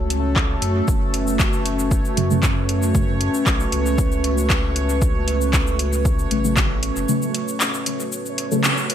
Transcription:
0.00 0.57 C#2 loud
0.00 8.95 A3 medium
0.00 8.95 C#4 medium
0.00 8.95 F#4 medium
0.00 0.91 A4 medium
0.00 0.84 C#5 medium
0.10 closed hi-hat medium
0.36 kick loud
0.36 clap medium
0.62 0.82 F#2 loud
0.62 closed hi-hat medium
0.88 2.00 F#1 loud
0.88 8.95 B4 medium
0.88 8.95 C#5 medium
0.88 kick loud
0.88 shaker soft
1.14 closed hi-hat medium
1.27 shaker soft
1.40 kick loud
1.40 clap medium
1.40 shaker soft
1.53 shaker soft
1.66 closed hi-hat medium
1.79 shaker soft
1.91 kick loud
1.91 shaker soft
2.05 shaker soft
2.17 3.29 F#2 medium
2.17 2.29 C#3 medium
2.17 2.29 F#3 medium
2.17 2.29 A3 medium
2.17 closed hi-hat medium
2.31 2.58 C#3 medium
2.31 2.58 F#3 medium
2.31 2.58 A3 loud
2.31 shaker soft
2.43 kick loud
2.43 clap medium
2.43 shaker soft
2.69 closed hi-hat medium
2.82 shaker soft
2.95 3.12 C#3 medium
2.95 3.12 F#3 medium
2.95 3.12 A3 loud
2.95 kick loud
2.95 shaker soft
3.21 closed hi-hat medium
3.34 shaker soft
3.46 3.67 B1 loud
3.46 kick loud
3.46 clap medium
3.46 shaker soft
3.60 shaker soft
3.72 6.26 C#2 loud
3.72 closed hi-hat medium
3.86 shaker soft
3.98 kick loud
3.98 shaker soft
4.12 shaker soft
4.24 closed hi-hat medium
4.38 shaker soft
4.50 kick loud
4.50 clap medium
4.50 shaker soft
4.76 closed hi-hat medium
4.89 shaker soft
5.02 kick loud
5.02 shaker soft
5.28 closed hi-hat medium
5.41 shaker soft
5.53 kick loud
5.53 clap medium
5.53 shaker soft
5.67 shaker soft
5.79 closed hi-hat medium
5.93 shaker soft
6.05 kick loud
6.05 shaker soft
6.19 shaker soft
6.31 6.91 A1 medium
6.31 6.43 C#3 medium
6.31 6.43 F#3 medium
6.31 6.43 A3 medium
6.31 closed hi-hat medium
6.45 6.71 C#3 loud
6.45 6.72 F#3 medium
6.45 6.71 A3 loud
6.45 shaker soft
6.57 kick loud
6.57 clap medium
6.57 shaker soft
6.83 closed hi-hat medium
6.96 7.06 F#1 medium
6.96 shaker soft
7.09 7.26 C#3 medium
7.09 7.26 F#3 medium
7.09 7.26 A3 loud
7.09 shaker soft
7.22 shaker soft
7.34 closed hi-hat medium
7.48 shaker soft
7.60 clap medium
7.60 shaker soft
7.74 shaker soft
7.86 closed hi-hat medium
8.00 shaker soft
8.12 shaker medium
8.26 shaker soft
8.38 closed hi-hat medium
8.52 8.68 C#3 medium
8.52 8.68 F#3 medium
8.52 8.68 A3 loud
8.52 shaker soft
8.64 clap medium
8.64 shaker soft
8.77 shaker soft
8.90 closed hi-hat medium

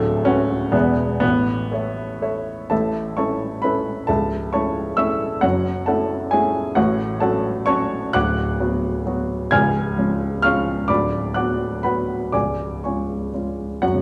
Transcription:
0.00 0.70 D1 medium
0.00 0.70 D2 medium
0.00 0.26 A3 loud
0.25 0.72 C#4 loud
0.25 0.69 F#4 medium
0.25 0.69 B4 soft
0.25 0.69 F#5 medium
0.72 1.20 E1 medium
0.72 1.20 E2 medium
0.72 1.19 B3 medium
0.72 1.17 G#4 medium
0.72 1.18 D5 medium
0.72 1.18 E5 medium
1.20 2.67 A1 medium
1.20 2.67 A2 medium
1.20 1.72 B3 medium
1.72 2.22 A3 soft
1.72 2.18 A4 soft
1.72 2.18 C#5 soft
1.72 2.19 E5 soft
2.22 2.67 A4 soft
2.22 2.67 C#5 soft
2.22 2.67 E5 medium
2.70 4.03 A1 medium
2.70 4.03 A2 medium
2.70 3.13 A4 medium
2.70 3.14 E5 medium
2.70 3.16 A5 medium
3.17 3.59 C#4 soft
3.17 3.59 E4 soft
3.17 3.59 A4 soft
3.17 3.59 C#5 medium
3.17 3.59 A5 medium
3.17 3.62 C#6 medium
3.62 4.04 C#4 soft
3.62 4.04 E4 soft
3.62 4.05 A4 medium
3.62 4.05 B4 medium
3.62 4.07 B5 medium
4.07 5.39 C#1 medium
4.07 5.39 C#2 medium
4.07 4.50 A4 medium
4.07 4.51 E5 medium
4.07 4.52 A5 medium
4.53 4.94 A3 soft
4.53 4.94 C#4 soft
4.53 4.95 E4 soft
4.53 4.95 C#5 medium
4.53 4.95 A5 medium
4.53 4.96 C#6 medium
4.97 5.39 A3 medium
4.97 5.39 C#4 soft
4.97 5.39 E4 soft
4.97 5.39 E5 medium
4.97 5.40 C#6 medium
4.97 5.42 E6 medium
5.41 6.72 F#1 medium
5.41 6.72 F#2 medium
5.41 5.84 F#4 medium
5.41 5.85 C#5 medium
5.41 5.86 F#5 medium
5.86 6.28 A3 soft
5.86 6.28 C#4 soft
5.86 6.29 E4 soft
5.86 6.29 A4 medium
5.86 6.29 F#5 medium
5.86 6.31 A5 medium
6.31 6.73 A3 medium
6.31 6.73 C#4 medium
6.31 6.73 E4 medium
6.31 6.74 G#4 medium
6.31 6.76 G#5 medium
6.75 8.11 A1 medium
6.75 8.11 A2 medium
6.75 7.18 F#4 medium
6.75 7.18 C#5 medium
6.75 7.20 F#5 medium
7.20 7.63 F#3 medium
7.20 7.63 C#4 soft
7.20 7.63 F#4 medium
7.20 7.63 A4 medium
7.20 7.63 F#5 medium
7.20 7.65 A5 medium
7.66 8.11 F#3 medium
7.66 8.11 C#4 medium
7.66 8.11 F#4 medium
7.66 8.11 C#5 medium
7.66 8.11 A5 medium
7.66 8.14 C#6 loud
8.13 9.48 D1 medium
8.13 9.48 D2 medium
8.13 9.47 F#5 medium
8.13 9.48 D6 medium
8.13 9.51 F#6 loud
8.60 9.02 F#3 medium
8.60 9.02 B3 medium
8.60 9.02 F#4 medium
9.06 9.47 F#3 medium
9.06 9.48 B3 medium
9.06 9.48 F#4 medium
9.51 10.85 C#1 medium
9.51 10.85 C#2 medium
9.51 10.39 G#5 medium
9.51 10.40 F6 medium
9.51 10.43 G#6 medium
9.97 10.39 F3 soft
9.97 10.39 G#3 soft
9.97 10.39 C#4 medium
10.42 10.85 F3 soft
10.42 10.85 G#3 medium
10.42 10.86 C#4 medium
10.42 10.86 F5 medium
10.42 10.86 C#6 medium
10.42 10.88 F6 medium
10.88 12.30 D1 medium
10.88 12.30 D2 medium
10.88 11.32 D5 medium
10.88 11.32 B5 medium
10.88 11.35 D6 medium
11.34 11.80 F#3 soft
11.34 11.80 B3 soft
11.34 11.80 F#4 soft
11.34 11.80 F#5 medium
11.34 11.80 D6 medium
11.34 11.83 F#6 medium
11.83 12.30 F#3 soft
11.83 12.30 B3 soft
11.83 12.31 F#4 soft
11.83 12.31 B4 medium
11.83 12.31 F#5 medium
11.83 12.33 B5 medium
12.32 13.78 C#1 soft
12.32 13.78 C#2 medium
12.32 12.81 D5 medium
12.32 12.81 G#5 medium
12.32 12.84 D6 medium
12.84 13.30 G#3 soft
12.84 13.30 C#4 soft
12.84 13.30 F4 soft
12.84 13.31 C#5 soft
12.84 13.31 G#5 soft
12.84 13.33 C#6 soft
13.34 13.78 G#3 soft
13.34 13.79 C#4 soft
13.34 13.79 F4 soft
13.82 14.02 F#2 medium
13.82 14.02 F#4 medium
13.82 14.02 C#5 soft
13.82 14.02 F#5 medium
13.95 14.02 C#3 medium

